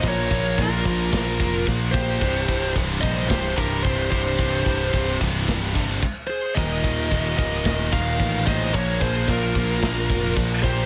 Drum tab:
CC |--------|--------|------x-|x-------|
RD |xxxxxxxx|xxxxxxxx|xxxxxx--|-xxxxxxx|
SD |----o---|----o---|----o---|----o---|
BD |oooooooo|oooooooo|ooooooo-|oooooooo|

CC |--------|
RD |xxxxxxxx|
SD |----o---|
BD |oooooooo|